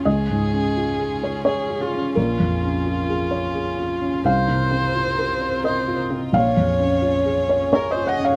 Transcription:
<<
  \new Staff \with { instrumentName = "Violin" } { \time 3/4 \key bes \minor \tempo 4 = 86 aes'2 aes'8 f'8 | f'2. | c''2 c''8 r8 | des''2 bes'16 c''16 ees''16 des''16 | }
  \new Staff \with { instrumentName = "Felt piano" } { \time 3/4 \key bes \minor << { ees''2 des''8 aes'8 | bes'2. | f''2 ees''8 r8 | f''2 des''16 ees''16 ges''16 f''16 | } \\ { \tuplet 3/2 { des,8 aes,8 des'8 f'8 aes'8 des''8 aes'8 f'8 des'8 } | \tuplet 3/2 { bes,,8 f,8 des'8 f'8 aes'8 des''8 aes'8 f'8 des'8 } | \tuplet 3/2 { c,8 c8 c'8 f'8 bes'8 c''8 bes'8 f'8 c'8 } | \tuplet 3/2 { bes,,8 f,8 des'8 f'8 aes'8 des''8 aes'8 f'8 des'8 } | } >> }
  \new Staff \with { instrumentName = "String section" } { \time 3/4 \key bes \minor << { <des' aes'>2.~ | <des' aes'>2. | <c' bes'>2. | <des' aes'>2. | } \\ { f'2.~ | f'2. | f'2.~ | f'2. | } >> }
>>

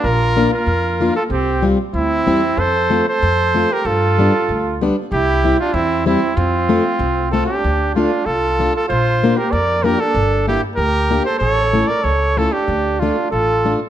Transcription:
<<
  \new Staff \with { instrumentName = "Trumpet" } { \time 2/4 \key f \major \tempo 4 = 95 bes'8. bes'4 a'16 | g'8 r8 e'4 | c''8. c''4 bes'16 | a'4. r8 |
g'8. f'16 e'8 e'8 | f'4. a'16 g'16~ | \key d \minor g'8 f'8 a'8. a'16 | c''8. bes'16 d''8 bes'16 a'16~ |
a'8 g'8 bes'8. c''16 | cis''8. d''16 cis''8 a'16 g'16~ | g'8 f'8 a'8. r16 | }
  \new Staff \with { instrumentName = "Trumpet" } { \time 2/4 \key f \major f'8. f'4 f'16 | c'8 r8 c'4 | a'8. a'4 g'16 | f'4. r8 |
e'8. d'16 c'8 c'8 | c'4. f'16 d'16~ | \key d \minor d'8 d'8 f'8. f'16 | f'8. g'16 bes'8 g'16 d'16~ |
d'8 e'8 g'8. a'16 | a'8. bes'16 a'8 f'16 d'16~ | d'8 d'8 f'8. r16 | }
  \new Staff \with { instrumentName = "Steel-string acoustic guitar" } { \time 2/4 \key f \major r8 <bes d' f'>8 r8 <bes d' f'>8 | r8 <g c' f'>8 r8 <g c' e'>8 | r8 <a c' f'>8 r8 <a c' f'>8 | r8 <g b d'>8 r8 <g b d'>8 |
r8 <g c' e'>8 r8 <g c' e'>8 | r8 <a c' f'>8 r8 <a c' f'>8 | \key d \minor r8 <a d' f'>8 r8 <a d' f'>8 | r8 <bes d' f'>8 r8 <bes d' f'>8 |
r8 <bes d' g'>8 r8 <bes d' g'>8 | r8 <a cis' e'>8 r8 <a cis' e'>8 | r8 <a d' f'>8 r8 <a d' f'>8 | }
  \new Staff \with { instrumentName = "Upright bass" } { \clef bass \time 2/4 \key f \major bes,,4 f,4 | c,4 d,8 e,8 | f,4 f,4 | g,4 d,4 |
c,4 e,4 | f,4 c,4 | \key d \minor d,4 c,4 | bes,,4 f,4 |
g,,4 d,4 | a,,4 cis,4 | d,4 a,,4 | }
>>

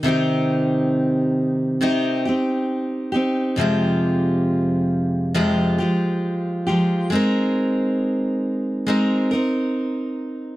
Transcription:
\new Staff \with { instrumentName = "Steel-string acoustic guitar" } { \time 4/4 \key c \phrygian \tempo 4 = 68 <c ees c' ees' g'>2 <c ees c' ees' g'>8 <c' ees' g'>4 <c' ees' g'>8 | <f, c f aes f' g'>2 <f, c f aes f' g'>8 <f aes f' g'>4 <f aes f' g'>8 | <aes c' ees' bes'>2 <aes c' ees' bes'>8 <c' ees' bes'>4. | }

